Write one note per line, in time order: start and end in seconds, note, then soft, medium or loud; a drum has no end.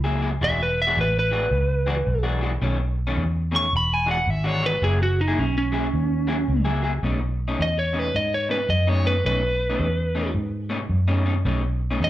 0.00 0.37 C#2 medium
0.00 0.21 G#4 medium
0.04 0.20 F#3 medium
0.04 0.21 A#3 medium
0.04 0.21 E4 medium
0.21 0.31 F#3 medium
0.21 0.31 A#3 medium
0.21 0.30 E4 medium
0.21 0.30 G#4 medium
0.31 muted clean electric guitar stroke medium
0.41 0.93 E1 medium
0.41 0.59 E3 medium
0.41 0.59 G#3 medium
0.41 0.58 D4 medium
0.41 0.58 F#4 loud
0.41 0.61 E5 loud
0.59 0.79 B4 medium
0.59 muted clean electric guitar stroke medium
0.82 0.98 E5 loud
0.87 1.03 E3 medium
0.87 1.03 G#3 medium
0.87 1.02 D4 medium
0.87 1.02 F#4 medium
0.97 1.48 A1 medium
0.97 1.17 B4 medium
1.19 2.24 B4 medium
1.31 1.45 E3 medium
1.31 1.45 G#3 medium
1.31 1.45 D4 medium
1.31 1.45 F#4 loud
1.51 2.03 C#2 loud
1.86 1.97 E3 medium
1.86 1.96 G#3 medium
1.86 1.96 D4 loud
1.86 1.96 F#4 loud
1.97 muted clean electric guitar stroke medium
2.07 2.58 B1 medium
2.23 2.40 E3 medium
2.23 2.41 G#3 medium
2.23 2.41 D4 medium
2.23 2.41 F#4 medium
2.41 2.52 E3 medium
2.41 2.51 G#3 medium
2.41 2.51 D4 medium
2.41 2.51 F#4 medium
2.52 muted clean electric guitar stroke medium
2.62 3.13 B1 medium
2.62 2.79 B2 medium
2.62 2.79 D#3 medium
2.62 2.79 A3 medium
2.62 2.79 C#4 loud
2.80 muted clean electric guitar stroke soft
3.07 3.23 B2 medium
3.07 3.23 D#3 medium
3.07 3.23 A3 medium
3.07 3.23 C#4 loud
3.17 3.68 E2 medium
3.52 3.65 B2 medium
3.52 3.65 D#3 medium
3.52 3.66 A3 medium
3.52 3.66 C#4 loud
3.56 3.73 C#6 loud
3.73 4.24 E1 medium
3.73 3.93 B5 loud
3.93 4.10 G#5 loud
4.06 4.17 E3 medium
4.06 4.17 G#3 loud
4.06 4.16 D4 medium
4.06 4.16 F#4 loud
4.11 4.30 F#5 loud
4.17 muted clean electric guitar stroke medium
4.27 4.79 G#1 medium
4.27 4.47 E5 medium
4.44 4.61 E3 medium
4.44 4.61 G#3 medium
4.44 4.62 D4 medium
4.44 4.62 F#4 loud
4.44 4.65 C#5 medium
4.62 4.73 E3 medium
4.62 4.73 G#3 medium
4.62 4.73 D4 medium
4.62 4.72 F#4 medium
4.62 4.83 B4 medium
4.74 muted clean electric guitar stroke medium
4.82 5.34 F#1 medium
4.82 5.00 F#3 medium
4.82 4.99 A#3 medium
4.82 4.99 E4 medium
4.82 4.99 G#4 medium
4.82 5.01 G#4 loud
5.00 5.20 F#4 loud
5.00 muted clean electric guitar stroke soft
5.21 5.39 D#4 medium
5.28 5.44 F#3 medium
5.28 5.44 A#3 medium
5.28 5.43 E4 medium
5.28 5.43 G#4 loud
5.39 5.90 B1 medium
5.39 5.56 C#4 medium
5.58 6.64 C#4 loud
5.72 5.86 F#3 medium
5.72 5.86 A#3 medium
5.72 5.86 E4 medium
5.72 5.87 G#4 loud
5.94 6.45 D#2 medium
6.27 6.38 F#3 medium
6.27 6.37 A#3 medium
6.27 6.37 E4 loud
6.27 6.36 G#4 medium
6.37 muted clean electric guitar stroke soft
6.48 7.00 C#2 medium
6.65 6.81 F#3 medium
6.65 6.81 A#3 medium
6.65 6.82 E4 medium
6.65 6.82 G#4 medium
6.82 6.93 F#3 medium
6.82 6.92 A#3 medium
6.82 6.92 E4 medium
6.82 6.92 G#4 medium
6.93 muted clean electric guitar stroke medium
7.03 7.55 B1 medium
7.03 7.21 B2 medium
7.03 7.21 A3 medium
7.03 7.20 C#4 medium
7.03 7.20 D#4 medium
7.21 muted clean electric guitar stroke medium
7.48 7.64 B2 medium
7.48 7.64 A3 medium
7.48 7.64 C#4 medium
7.48 7.64 D#4 loud
7.59 8.11 E2 medium
7.59 7.79 D#5 medium
7.79 7.99 C#5 medium
7.93 8.07 B2 medium
7.93 8.07 A3 medium
7.93 8.07 C#4 medium
7.93 8.07 D#4 medium
7.99 8.16 B4 medium
8.15 8.66 G#2 loud
8.15 8.33 D#5 medium
8.34 8.51 C#5 medium
8.49 8.59 B2 medium
8.49 8.60 A3 medium
8.49 8.59 C#4 medium
8.49 8.59 D#4 medium
8.49 8.69 B4 medium
8.60 muted clean electric guitar stroke soft
8.69 9.21 F#2 loud
8.69 8.89 D#5 medium
8.87 9.03 B2 medium
8.87 9.03 A3 medium
8.87 9.04 C#4 medium
8.87 9.04 D#4 medium
8.87 9.06 C#5 medium
9.05 9.15 B2 medium
9.05 9.15 A3 medium
9.05 9.15 C#4 medium
9.05 9.14 D#4 medium
9.05 9.25 B4 medium
9.16 muted clean electric guitar stroke soft
9.25 9.76 B1 medium
9.25 9.43 B2 medium
9.25 9.43 A3 medium
9.25 9.42 C#4 medium
9.25 9.42 D#4 medium
9.25 10.33 B4 loud
9.43 muted clean electric guitar stroke medium
9.70 9.86 B2 medium
9.70 9.86 A3 medium
9.70 9.86 C#4 medium
9.70 9.85 D#4 loud
9.79 10.31 E2 medium
10.15 10.28 B2 medium
10.15 10.28 A3 medium
10.15 10.29 C#4 medium
10.15 10.29 D#4 medium
10.34 10.86 G#2 medium
10.70 10.80 B2 medium
10.70 10.80 A3 medium
10.70 10.79 C#4 medium
10.70 10.79 D#4 loud
10.80 muted clean electric guitar stroke soft
10.89 11.41 F#2 medium
11.08 11.24 B2 medium
11.08 11.24 A3 medium
11.08 11.25 C#4 medium
11.08 11.25 D#4 medium
11.25 11.35 B2 medium
11.25 11.35 A3 medium
11.25 11.35 C#4 medium
11.25 11.34 D#4 medium
11.36 muted clean electric guitar stroke medium
11.45 11.97 B1 medium
11.45 11.63 B2 medium
11.45 11.63 A3 medium
11.45 11.62 C#4 medium
11.45 11.62 D#4 medium
11.64 muted clean electric guitar stroke medium
11.91 12.07 B2 medium
11.91 12.07 A3 medium
11.91 12.06 C#4 medium
11.91 12.06 D#4 medium
12.00 12.10 E2 medium
12.00 12.10 D#5 medium